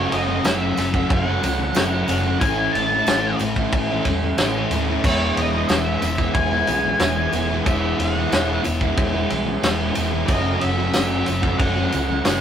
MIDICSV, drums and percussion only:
0, 0, Header, 1, 2, 480
1, 0, Start_track
1, 0, Key_signature, 4, "major"
1, 0, Tempo, 655738
1, 1766, Time_signature, 4, 2, 24, 8
1, 9083, End_track
2, 0, Start_track
2, 0, Title_t, "Drums"
2, 88, Note_on_c, 9, 51, 75
2, 91, Note_on_c, 9, 54, 27
2, 161, Note_off_c, 9, 51, 0
2, 164, Note_off_c, 9, 54, 0
2, 326, Note_on_c, 9, 54, 96
2, 328, Note_on_c, 9, 51, 93
2, 333, Note_on_c, 9, 38, 109
2, 399, Note_off_c, 9, 54, 0
2, 401, Note_off_c, 9, 51, 0
2, 406, Note_off_c, 9, 38, 0
2, 566, Note_on_c, 9, 54, 84
2, 572, Note_on_c, 9, 51, 71
2, 577, Note_on_c, 9, 38, 34
2, 639, Note_off_c, 9, 54, 0
2, 645, Note_off_c, 9, 51, 0
2, 651, Note_off_c, 9, 38, 0
2, 687, Note_on_c, 9, 36, 96
2, 760, Note_off_c, 9, 36, 0
2, 808, Note_on_c, 9, 36, 125
2, 814, Note_on_c, 9, 51, 96
2, 881, Note_off_c, 9, 36, 0
2, 887, Note_off_c, 9, 51, 0
2, 1049, Note_on_c, 9, 54, 80
2, 1051, Note_on_c, 9, 51, 72
2, 1122, Note_off_c, 9, 54, 0
2, 1124, Note_off_c, 9, 51, 0
2, 1278, Note_on_c, 9, 54, 96
2, 1288, Note_on_c, 9, 51, 99
2, 1293, Note_on_c, 9, 38, 110
2, 1351, Note_off_c, 9, 54, 0
2, 1361, Note_off_c, 9, 51, 0
2, 1366, Note_off_c, 9, 38, 0
2, 1520, Note_on_c, 9, 54, 81
2, 1530, Note_on_c, 9, 51, 80
2, 1594, Note_off_c, 9, 54, 0
2, 1603, Note_off_c, 9, 51, 0
2, 1766, Note_on_c, 9, 54, 75
2, 1767, Note_on_c, 9, 36, 127
2, 1769, Note_on_c, 9, 51, 109
2, 1839, Note_off_c, 9, 54, 0
2, 1840, Note_off_c, 9, 36, 0
2, 1842, Note_off_c, 9, 51, 0
2, 2014, Note_on_c, 9, 51, 77
2, 2087, Note_off_c, 9, 51, 0
2, 2245, Note_on_c, 9, 54, 96
2, 2249, Note_on_c, 9, 51, 103
2, 2255, Note_on_c, 9, 38, 125
2, 2318, Note_off_c, 9, 54, 0
2, 2323, Note_off_c, 9, 51, 0
2, 2328, Note_off_c, 9, 38, 0
2, 2484, Note_on_c, 9, 54, 83
2, 2491, Note_on_c, 9, 51, 72
2, 2557, Note_off_c, 9, 54, 0
2, 2564, Note_off_c, 9, 51, 0
2, 2608, Note_on_c, 9, 36, 86
2, 2681, Note_off_c, 9, 36, 0
2, 2727, Note_on_c, 9, 36, 110
2, 2728, Note_on_c, 9, 51, 108
2, 2800, Note_off_c, 9, 36, 0
2, 2801, Note_off_c, 9, 51, 0
2, 2964, Note_on_c, 9, 51, 81
2, 2967, Note_on_c, 9, 36, 77
2, 3037, Note_off_c, 9, 51, 0
2, 3040, Note_off_c, 9, 36, 0
2, 3205, Note_on_c, 9, 51, 104
2, 3205, Note_on_c, 9, 54, 89
2, 3211, Note_on_c, 9, 38, 111
2, 3278, Note_off_c, 9, 54, 0
2, 3279, Note_off_c, 9, 51, 0
2, 3284, Note_off_c, 9, 38, 0
2, 3446, Note_on_c, 9, 51, 83
2, 3455, Note_on_c, 9, 54, 68
2, 3519, Note_off_c, 9, 51, 0
2, 3528, Note_off_c, 9, 54, 0
2, 3689, Note_on_c, 9, 36, 121
2, 3690, Note_on_c, 9, 54, 64
2, 3691, Note_on_c, 9, 49, 113
2, 3763, Note_off_c, 9, 36, 0
2, 3763, Note_off_c, 9, 54, 0
2, 3764, Note_off_c, 9, 49, 0
2, 3932, Note_on_c, 9, 51, 77
2, 3933, Note_on_c, 9, 54, 26
2, 4005, Note_off_c, 9, 51, 0
2, 4006, Note_off_c, 9, 54, 0
2, 4163, Note_on_c, 9, 54, 87
2, 4167, Note_on_c, 9, 51, 98
2, 4173, Note_on_c, 9, 38, 111
2, 4237, Note_off_c, 9, 54, 0
2, 4241, Note_off_c, 9, 51, 0
2, 4246, Note_off_c, 9, 38, 0
2, 4406, Note_on_c, 9, 51, 70
2, 4409, Note_on_c, 9, 54, 81
2, 4479, Note_off_c, 9, 51, 0
2, 4482, Note_off_c, 9, 54, 0
2, 4526, Note_on_c, 9, 36, 91
2, 4599, Note_off_c, 9, 36, 0
2, 4644, Note_on_c, 9, 51, 94
2, 4646, Note_on_c, 9, 36, 109
2, 4717, Note_off_c, 9, 51, 0
2, 4719, Note_off_c, 9, 36, 0
2, 4883, Note_on_c, 9, 51, 67
2, 4892, Note_on_c, 9, 54, 76
2, 4957, Note_off_c, 9, 51, 0
2, 4965, Note_off_c, 9, 54, 0
2, 5120, Note_on_c, 9, 51, 97
2, 5125, Note_on_c, 9, 38, 107
2, 5126, Note_on_c, 9, 54, 95
2, 5193, Note_off_c, 9, 51, 0
2, 5198, Note_off_c, 9, 38, 0
2, 5199, Note_off_c, 9, 54, 0
2, 5362, Note_on_c, 9, 54, 75
2, 5367, Note_on_c, 9, 51, 80
2, 5435, Note_off_c, 9, 54, 0
2, 5440, Note_off_c, 9, 51, 0
2, 5608, Note_on_c, 9, 51, 103
2, 5609, Note_on_c, 9, 36, 115
2, 5610, Note_on_c, 9, 54, 65
2, 5681, Note_off_c, 9, 51, 0
2, 5682, Note_off_c, 9, 36, 0
2, 5683, Note_off_c, 9, 54, 0
2, 5849, Note_on_c, 9, 54, 26
2, 5853, Note_on_c, 9, 51, 77
2, 5922, Note_off_c, 9, 54, 0
2, 5926, Note_off_c, 9, 51, 0
2, 6092, Note_on_c, 9, 54, 88
2, 6093, Note_on_c, 9, 51, 100
2, 6098, Note_on_c, 9, 38, 108
2, 6165, Note_off_c, 9, 54, 0
2, 6166, Note_off_c, 9, 51, 0
2, 6171, Note_off_c, 9, 38, 0
2, 6327, Note_on_c, 9, 54, 83
2, 6332, Note_on_c, 9, 51, 66
2, 6400, Note_off_c, 9, 54, 0
2, 6405, Note_off_c, 9, 51, 0
2, 6449, Note_on_c, 9, 36, 92
2, 6522, Note_off_c, 9, 36, 0
2, 6570, Note_on_c, 9, 36, 115
2, 6570, Note_on_c, 9, 51, 100
2, 6643, Note_off_c, 9, 36, 0
2, 6644, Note_off_c, 9, 51, 0
2, 6809, Note_on_c, 9, 51, 74
2, 6883, Note_off_c, 9, 51, 0
2, 7051, Note_on_c, 9, 51, 108
2, 7052, Note_on_c, 9, 54, 93
2, 7057, Note_on_c, 9, 38, 118
2, 7125, Note_off_c, 9, 51, 0
2, 7125, Note_off_c, 9, 54, 0
2, 7130, Note_off_c, 9, 38, 0
2, 7285, Note_on_c, 9, 51, 82
2, 7285, Note_on_c, 9, 54, 76
2, 7358, Note_off_c, 9, 51, 0
2, 7358, Note_off_c, 9, 54, 0
2, 7525, Note_on_c, 9, 54, 71
2, 7529, Note_on_c, 9, 36, 118
2, 7529, Note_on_c, 9, 51, 118
2, 7598, Note_off_c, 9, 54, 0
2, 7602, Note_off_c, 9, 36, 0
2, 7602, Note_off_c, 9, 51, 0
2, 7767, Note_on_c, 9, 51, 77
2, 7771, Note_on_c, 9, 54, 25
2, 7841, Note_off_c, 9, 51, 0
2, 7844, Note_off_c, 9, 54, 0
2, 8003, Note_on_c, 9, 51, 94
2, 8008, Note_on_c, 9, 38, 105
2, 8009, Note_on_c, 9, 54, 85
2, 8076, Note_off_c, 9, 51, 0
2, 8081, Note_off_c, 9, 38, 0
2, 8082, Note_off_c, 9, 54, 0
2, 8243, Note_on_c, 9, 51, 78
2, 8253, Note_on_c, 9, 54, 78
2, 8316, Note_off_c, 9, 51, 0
2, 8326, Note_off_c, 9, 54, 0
2, 8367, Note_on_c, 9, 36, 93
2, 8440, Note_off_c, 9, 36, 0
2, 8488, Note_on_c, 9, 36, 119
2, 8488, Note_on_c, 9, 51, 101
2, 8561, Note_off_c, 9, 36, 0
2, 8561, Note_off_c, 9, 51, 0
2, 8727, Note_on_c, 9, 51, 63
2, 8730, Note_on_c, 9, 54, 72
2, 8800, Note_off_c, 9, 51, 0
2, 8804, Note_off_c, 9, 54, 0
2, 8964, Note_on_c, 9, 51, 95
2, 8969, Note_on_c, 9, 38, 110
2, 8970, Note_on_c, 9, 54, 99
2, 9037, Note_off_c, 9, 51, 0
2, 9042, Note_off_c, 9, 38, 0
2, 9043, Note_off_c, 9, 54, 0
2, 9083, End_track
0, 0, End_of_file